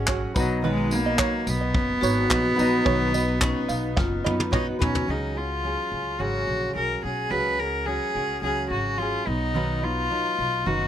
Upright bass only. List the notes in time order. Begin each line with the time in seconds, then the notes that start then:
Already playing: G#1
0.36 B1
1.47 B1
1.75 F#1
2.02 G#1
2.31 A#1
2.59 A#1
2.86 B1
3.70 B1
3.97 F#1
4.26 F#2
4.81 B1
5.08 C#2
5.92 C#2
6.20 G#1
6.47 A#1
6.76 B1
7.04 B1
7.31 C#2
8.15 C#2
8.42 C#2
8.70 G#1
9.27 B1
10.39 B1
10.66 F#1